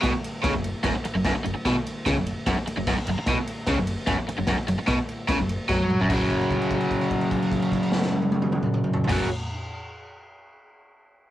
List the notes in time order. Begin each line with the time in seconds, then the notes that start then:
0.02 B1 B2, kick, snare, ride
0.13 muted overdriven electric guitar stroke, muted picked electric bass stroke
0.24 ride
0.43 C#2 C#3, kick, snare, ride
0.54 F#1 F#2
0.64 ride
0.83 F#1 F#2, kick, snare, ride
0.95 muted overdriven electric guitar stroke
1.05 muted picked electric bass stroke, muted overdriven electric guitar stroke, ride
1.14 F#1 F#2
1.25 F#1 F#2, kick, snare, ride
1.35 muted overdriven electric guitar stroke
1.44 F#1 F#2, ride
1.55 muted overdriven electric guitar stroke
1.65 B1 B2, kick, snare, ride
1.75 muted overdriven electric guitar stroke
1.87 ride
2.06 C#2 C#3, kick, snare, ride
2.15 F#1 F#2
2.27 ride
2.46 F#1 F#2, kick, snare, ride
2.58 muted picked electric bass stroke, muted overdriven electric guitar stroke
2.67 muted picked electric bass stroke, muted overdriven electric guitar stroke, ride
2.77 F#1 F#2
2.87 F#1 F#2, kick, snare, crash
2.98 muted picked electric bass stroke, muted overdriven electric guitar stroke
3.06 F#1 F#2, ride
3.17 muted picked electric bass stroke, muted overdriven electric guitar stroke
3.26 B1 B2, kick, snare, ride
3.36 muted picked electric bass stroke, muted overdriven electric guitar stroke
3.47 ride
3.67 C#2 C#3, kick, snare, ride
3.78 F#1 F#2
3.87 ride
4.07 F#1 F#2, kick, snare, ride
4.19 muted overdriven electric guitar stroke, muted picked electric bass stroke
4.29 muted picked electric bass stroke, muted overdriven electric guitar stroke, ride
4.38 F#1 F#2
4.47 F#1 F#2, kick, snare, ride
4.57 muted picked electric bass stroke, muted overdriven electric guitar stroke
4.68 F#1 F#2, ride
4.79 muted overdriven electric guitar stroke, muted picked electric bass stroke
4.87 B1 B2, kick, snare, ride
4.98 muted overdriven electric guitar stroke, muted picked electric bass stroke
5.09 ride
5.28 C#2 C#3, kick, snare, ride
5.38 F#1 F#2
5.49 ride
5.69 F#2 F#3, kick, snare
5.80 high tom
5.90 mid tom
6.00 F#1 F#2, floor tom
6.09 F#1 F#2 C#3, kick, crash
6.14 F#3
6.30 kick, crash
6.41 crash
6.51 kick, crash
6.62 crash
6.71 kick, crash
6.81 crash
6.91 kick, crash
7.01 crash
7.11 kick, crash
7.21 crash
7.31 kick, crash
7.42 crash
7.52 kick, crash
7.62 crash
7.72 kick, crash
7.83 crash
7.92 snare
8.01 snare
8.13 high tom
8.22 high tom
8.32 high tom
8.42 mid tom
8.52 mid tom
8.63 mid tom
8.74 mid tom
8.84 mid tom
8.93 floor tom
9.04 F#2, floor tom
9.09 F#1 C#3 F#3, kick, snare, crash